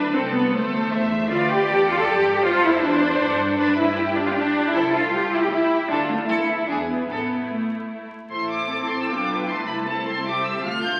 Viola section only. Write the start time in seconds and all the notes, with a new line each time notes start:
Already playing: D4
0.14 C4
0.33 B3
0.54 A3
1.31 F4
1.51 G4
1.89 F4
1.99 A4
2.08 G4
2.45 F4
2.64 E4
2.83 D4
3.58 D4
3.77 E4
4.15 D4
4.25 F4
4.35 D4
4.74 E4
4.93 F4
5.32 E4
5.43 G4
5.53 E4
5.90 D4
6.11 A3
6.29 E4
6.68 D4
6.88 B3
7.10 B3
7.49 A3
8.31 A3 E4
8.69 C4
9.10 B3 D4
9.48 A3 E4
9.87 C4 E4
10.27 G4
10.64 A3 F4